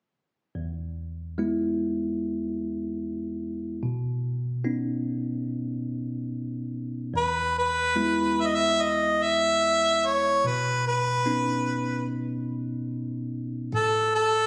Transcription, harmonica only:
7.17 7.54 B4 medium
7.58 8.43 B4 medium
8.41 8.48 E5 medium
8.46 8.57 D#5 medium
8.55 8.83 E5 medium
8.82 9.25 D#5 medium
9.23 10.08 E5 medium
10.06 10.48 C#5 medium
10.47 10.86 B4 medium
10.88 12.05 B4 medium
13.75 14.11 A4 medium
14.15 14.47 A4 medium

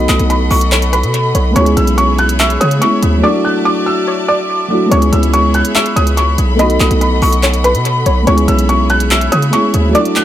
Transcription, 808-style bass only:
0.09 0.19 B1 loud
0.19 0.50 B1 loud
0.51 1.05 B1 loud
1.03 1.33 B2 loud
1.35 1.55 B1 loud
1.56 1.76 C#2 loud
1.77 2.57 B1 loud
2.61 2.81 C#3 loud
3.03 3.23 D2 loud
4.92 5.12 C#2 loud
5.12 5.63 C#2 loud
5.96 6.37 C#2 loud
6.38 6.79 B1 loud
6.80 6.90 B1 loud
6.91 7.21 B1 loud
7.22 7.76 B1 loud
7.75 8.05 B2 loud
8.06 8.26 B1 loud
8.27 8.47 C#2 loud
8.48 9.29 B1 loud
9.32 9.52 C#3 loud
9.74 9.94 D2 loud

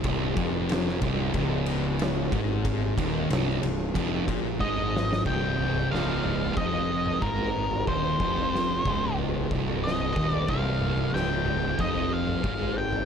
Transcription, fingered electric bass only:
0.05 0.35 C1 medium
0.37 0.98 F1 loud
1.02 1.32 C1 loud
1.34 2.28 C#1 loud
2.32 2.93 G#1 loud
2.98 3.28 D#1 loud
3.30 3.60 C1 loud
3.62 3.93 C1 medium
3.96 4.26 F1 loud
4.28 4.58 A#1 medium
4.61 5.22 G#1 medium
5.26 5.87 C1 medium
5.92 6.53 C#1 medium
6.57 7.18 F1 loud
7.22 7.83 G#1 loud
7.87 8.18 D#1 medium
8.20 8.81 F1 medium
8.86 9.47 C#1 loud
9.51 10.12 C1 medium
10.16 10.46 D#1 loud
10.49 11.10 C1 medium
11.13 11.75 C#1 medium
11.79 12.40 F1 loud
12.44 13.05 G#1 medium

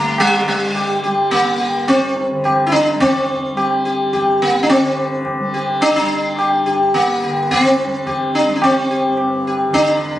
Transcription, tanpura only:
0.00 1.69 G2 medium
0.00 2.31 D3 medium
0.00 0.46 G3 medium
0.46 1.07 G3 medium
1.07 2.94 G3 soft
1.69 4.15 G2 soft
2.31 4.77 D3 medium
2.94 3.55 G3 medium
3.55 5.40 G3 medium
4.15 6.62 G2 soft
4.78 7.24 D3 medium
5.40 6.01 G3 medium
6.01 7.85 G3 medium
6.62 9.06 G2 medium
7.25 9.68 D3 soft
7.85 8.47 G3 medium
8.47 10.19 G3 medium
9.06 10.19 G2 medium
9.68 10.19 D3 medium

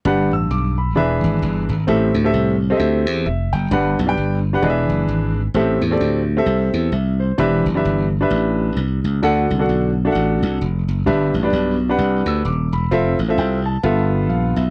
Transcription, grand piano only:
0.05 0.74 G2 medium
0.05 0.30 D4 medium
0.05 0.31 G4 medium
0.05 0.31 B4 medium
0.05 0.32 F#5 medium
0.33 0.50 E6 medium
0.51 0.76 D6 medium
0.78 1.21 B5 medium
0.96 1.65 E3 medium
0.96 1.72 D4 medium
0.96 1.73 G#4 medium
0.96 1.73 B4 medium
0.96 1.73 E5 medium
1.87 2.57 A2 medium
1.87 2.13 C4 medium
1.87 2.13 G4 medium
1.87 2.13 A4 medium
1.87 2.14 E5 medium
2.24 2.54 C4 medium
2.24 2.54 G4 medium
2.24 2.54 A4 medium
2.24 2.55 E5 medium
2.70 3.25 C4 medium
2.70 3.25 G4 medium
2.70 3.26 A4 medium
2.70 2.75 D#5 medium
2.77 3.25 E5 medium
3.26 3.51 E5 medium
3.53 3.96 G5 medium
3.71 4.40 G2 medium
3.71 3.96 D4 medium
3.71 3.97 G4 medium
3.71 3.97 B4 medium
3.71 3.97 F#5 medium
4.07 4.37 D4 medium
4.07 4.37 G4 medium
4.07 4.38 B4 medium
4.07 4.38 G5 medium
4.53 4.61 D4 medium
4.53 4.63 G4 medium
4.53 4.62 B4 medium
4.53 4.64 F#5 medium
4.62 5.32 E3 medium
4.62 5.39 D4 medium
4.62 5.39 G#4 medium
4.62 5.40 B4 medium
4.62 4.70 D#5 medium
4.70 5.43 E5 medium
5.55 6.24 A2 medium
5.55 5.80 C4 medium
5.55 5.80 G4 medium
5.55 5.81 A4 medium
5.55 5.81 E5 medium
5.91 6.21 C4 medium
5.91 6.21 G4 medium
5.91 6.21 A4 medium
5.91 6.22 D5 medium
6.37 6.92 C4 medium
6.37 6.92 G4 medium
6.37 6.93 A4 medium
6.37 6.91 E5 medium
6.93 7.18 E5 medium
7.20 7.63 C5 medium
7.38 8.08 E3 medium
7.38 7.64 D4 medium
7.38 7.64 G4 medium
7.38 7.64 B4 medium
7.38 7.65 E5 medium
7.75 8.05 D4 medium
7.75 8.05 G4 medium
7.75 8.06 B4 medium
7.75 8.06 E5 medium
8.21 8.77 D4 medium
8.21 8.77 G4 medium
8.21 8.77 B4 medium
8.21 8.78 E5 medium
9.22 9.92 D3 medium
9.22 9.48 D4 medium
9.22 9.48 F#4 medium
9.22 9.49 A4 medium
9.22 9.49 F#5 medium
9.59 9.89 D4 medium
9.59 9.89 F#4 medium
9.59 9.90 A4 medium
9.59 9.90 F#5 medium
10.05 10.61 D4 medium
10.05 10.61 F#4 medium
10.05 10.62 A4 medium
10.05 10.10 E5 medium
10.12 10.64 F#5 medium
11.06 11.76 G2 medium
11.06 11.32 D4 medium
11.06 11.32 G4 medium
11.06 11.32 B4 medium
11.06 11.33 E5 medium
11.43 11.73 D4 medium
11.43 11.74 G4 medium
11.43 11.74 B4 medium
11.43 11.74 D5 medium
11.89 12.45 D4 medium
11.89 12.45 G4 medium
11.89 12.46 B4 medium
11.89 12.46 F#5 medium
12.28 12.45 E6 medium
12.45 12.71 D6 medium
12.73 13.17 B5 medium
12.91 13.17 C4 medium
12.91 13.17 F4 medium
12.91 13.18 A4 medium
12.91 13.18 E5 medium
13.28 13.58 C4 medium
13.28 13.58 F4 medium
13.28 13.59 A4 medium
13.28 13.59 E5 medium
13.39 13.64 G5 medium
13.66 14.09 A5 medium
13.83 14.53 G2 medium
13.83 14.60 B3 medium
13.83 14.61 F4 medium
13.83 14.61 A4 medium
13.83 14.30 E5 medium
14.29 14.55 F5 medium
14.57 14.70 E5 medium

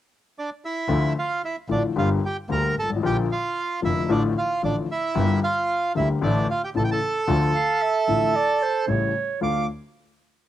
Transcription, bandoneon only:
0.38 0.50 D4 medium
0.38 0.50 D5 medium
0.65 1.13 E4 medium
0.65 1.13 E5 medium
1.19 1.42 F4 medium
1.19 1.42 F5 medium
1.45 1.56 E4 soft
1.45 1.56 E5 medium
1.72 1.83 D4 medium
1.72 1.83 D5 medium
1.98 2.10 F4 medium
1.98 2.10 F5 medium
2.26 2.37 G4 medium
2.26 2.37 G5 medium
2.52 2.75 A#4 medium
2.52 2.75 A#5 medium
2.79 2.90 A4 medium
2.79 2.91 A5 medium
3.06 3.17 G4 medium
3.06 3.17 G5 medium
3.32 3.80 F4 medium
3.32 3.80 F5 medium
3.85 4.09 E4 medium
3.85 4.11 E5 medium
4.11 4.23 D4 medium
4.11 4.23 D5 medium
4.38 4.62 F4 medium
4.38 4.62 F5 medium
4.65 4.76 D4 soft
4.65 4.76 D5 medium
4.92 5.40 E4 medium
4.92 5.40 E5 medium
5.44 5.93 F4 medium
5.44 5.92 F5 medium
5.97 6.09 E4 medium
5.97 6.08 E5 medium
6.23 6.47 D4 medium
6.23 6.47 D5 medium
6.50 6.62 F4 soft
6.50 6.62 F5 medium
6.64 6.70 G4 soft
6.64 6.70 G5 medium
6.77 6.83 A4 medium
6.77 6.82 A5 medium
6.84 6.90 G5 medium
6.91 8.86 A4 medium
6.91 8.85 A5 medium
9.43 9.67 D6 medium

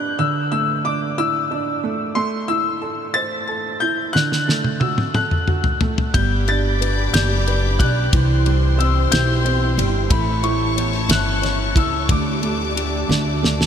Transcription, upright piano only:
0.00 0.16 G3 medium
0.00 0.20 D4 medium
0.00 0.21 B4 medium
0.00 0.16 D5 medium
0.19 2.12 D3 medium
0.52 1.79 A3 medium
0.85 1.49 D4 medium
1.18 2.13 E4 medium
1.51 2.14 D4 medium
1.84 2.15 A3 medium
2.16 4.10 A3 medium
2.49 3.77 E4 medium
2.82 3.47 A4 medium
3.16 4.12 C5 medium
3.48 4.13 A4 medium
3.82 4.14 E4 medium
4.15 6.10 D3 medium
4.48 5.77 A3 medium
4.82 5.46 F#4 soft
5.15 6.11 A4 medium
5.47 6.12 F#4 medium
5.81 6.13 A3 medium
6.15 8.10 G3 medium
6.48 7.77 D4 medium
6.81 7.46 B4 medium
7.14 8.11 D5 medium
7.48 8.12 B4 medium
7.81 8.12 D4 medium
8.13 10.07 E3 medium
8.46 9.74 G3 medium
8.78 9.43 C4 medium
9.11 10.07 E4 medium
9.45 10.09 C4 medium
9.78 10.10 G3 medium
10.10 12.05 A3 medium
10.43 11.72 E4 medium
10.76 11.41 C#5 medium
11.09 12.06 E5 medium
11.42 12.07 C#5 medium
11.75 12.08 E4 medium
12.09 13.06 D3 medium
12.42 13.07 A3 medium
12.76 13.08 G4 medium
13.09 13.66 D3 medium
13.43 13.66 A3 medium

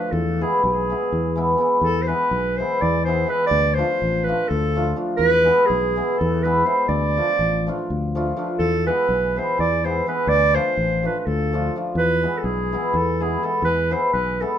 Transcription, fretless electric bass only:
0.13 0.43 E2 medium
0.64 0.93 B1 medium
1.13 1.54 E2 medium
1.82 2.12 E2 medium
2.31 2.62 B1 medium
2.82 3.24 E2 medium
3.51 3.81 D2 loud
4.02 4.32 A1 medium
4.51 4.92 D2 medium
5.19 5.50 E2 medium
5.70 6.00 B1 medium
6.21 6.62 E2 medium
6.89 7.19 D2 loud
7.39 7.69 A1 medium
7.90 8.31 D2 medium
8.59 8.89 E2 medium
9.09 9.39 B1 medium
9.59 10.00 E2 medium
10.27 10.57 D2 medium
10.77 11.07 A1 medium
11.27 11.68 D2 medium
11.95 12.25 E2 medium
12.44 12.75 B1 medium
12.94 13.36 E2 medium
13.62 13.93 E2 medium
14.14 14.44 B1 medium

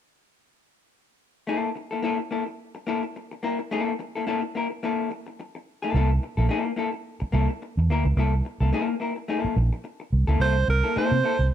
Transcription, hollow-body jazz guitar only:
1.47 1.68 A#3 medium
1.47 1.69 E4 medium
1.47 1.69 A4 medium
1.75 muted hollow-body jazz guitar stroke soft
1.91 2.01 A#3 soft
1.91 2.01 E4 medium
1.91 2.00 A4 medium
2.02 2.18 A#3 medium
2.02 2.18 E4 medium
2.02 2.18 A4 medium
2.19 muted hollow-body jazz guitar stroke soft
2.31 2.42 A#3 medium
2.31 2.43 E4 medium
2.31 2.43 A4 medium
2.46 muted hollow-body jazz guitar stroke soft
2.75 muted hollow-body jazz guitar stroke medium
2.87 3.02 A#3 medium
2.87 3.02 E4 medium
2.87 3.02 A4 medium
3.03 muted hollow-body jazz guitar stroke soft
3.16 muted hollow-body jazz guitar stroke soft
3.31 muted hollow-body jazz guitar stroke soft
3.43 3.58 A#3 medium
3.43 3.58 E4 medium
3.43 3.58 A#4 medium
3.59 muted hollow-body jazz guitar stroke soft
3.71 3.92 A#3 medium
3.71 3.92 E4 medium
3.71 3.93 A4 loud
3.99 muted hollow-body jazz guitar stroke soft
4.15 4.25 A#3 soft
4.15 4.24 E4 medium
4.15 4.24 A4 medium
4.27 4.41 A#3 medium
4.27 4.42 E4 medium
4.27 4.41 A4 medium
4.42 muted hollow-body jazz guitar stroke soft
4.55 4.66 A#3 medium
4.55 4.67 E4 medium
4.55 4.67 A#4 medium
4.70 muted hollow-body jazz guitar stroke soft
4.83 5.08 A#3 medium
4.83 5.09 E4 medium
4.83 5.09 A4 medium
5.11 muted hollow-body jazz guitar stroke soft
5.27 muted hollow-body jazz guitar stroke soft
5.40 muted hollow-body jazz guitar stroke soft
5.55 muted hollow-body jazz guitar stroke soft
5.82 5.94 A#3 medium
5.82 5.95 E4 medium
5.82 5.96 A4 medium
5.95 6.09 A#3 medium
5.95 6.10 E4 medium
5.95 6.10 A4 medium
6.23 muted hollow-body jazz guitar stroke soft
6.37 6.48 A#3 soft
6.37 6.47 E4 medium
6.37 6.46 A4 medium
6.49 6.70 A#3 medium
6.49 6.65 E4 medium
6.49 6.64 A4 medium
6.65 muted hollow-body jazz guitar stroke soft
6.76 6.88 A#3 medium
6.76 6.89 E4 medium
6.76 6.90 A4 medium
6.93 muted hollow-body jazz guitar stroke soft
7.20 muted hollow-body jazz guitar stroke medium
7.32 7.48 A#3 medium
7.32 7.48 E4 medium
7.32 7.48 A4 medium
7.49 muted hollow-body jazz guitar stroke soft
7.62 muted hollow-body jazz guitar stroke soft
7.79 muted hollow-body jazz guitar stroke soft
7.90 8.04 A#3 medium
7.90 8.05 E4 medium
7.90 8.05 A#4 medium
8.05 muted hollow-body jazz guitar stroke soft
8.17 8.32 A#3 medium
8.17 8.32 E4 medium
8.17 8.33 A4 medium
8.45 muted hollow-body jazz guitar stroke soft
8.60 8.70 A#3 soft
8.60 8.70 E4 medium
8.60 8.69 A4 medium
8.73 8.93 A#3 medium
8.73 8.88 E4 medium
8.73 8.86 A4 medium
8.87 muted hollow-body jazz guitar stroke soft
9.00 9.12 A#3 medium
9.00 9.12 E4 medium
9.00 9.13 A#4 medium
9.16 muted hollow-body jazz guitar stroke soft
9.28 9.39 A3 medium
9.28 9.40 D#4 medium
9.28 9.55 A4 medium
9.39 9.54 A#3 medium
9.39 9.55 E4 medium
9.57 muted hollow-body jazz guitar stroke soft
9.73 muted hollow-body jazz guitar stroke soft
9.84 muted hollow-body jazz guitar stroke soft
10.00 muted hollow-body jazz guitar stroke soft
10.27 10.39 A#3 medium
10.27 10.40 E4 medium
10.27 10.39 A4 medium
10.40 10.55 A#3 medium
10.40 10.55 E4 medium
10.40 10.55 A4 medium
10.68 muted hollow-body jazz guitar stroke soft
10.84 10.93 A#3 soft
10.84 10.93 E4 soft
10.84 10.92 A4 medium
10.96 11.16 A#3 medium
10.96 11.11 E4 medium
10.96 11.10 A4 medium
11.11 muted hollow-body jazz guitar stroke soft
11.24 11.35 A#3 medium
11.24 11.35 E4 medium
11.24 11.36 A4 medium
11.40 muted hollow-body jazz guitar stroke soft

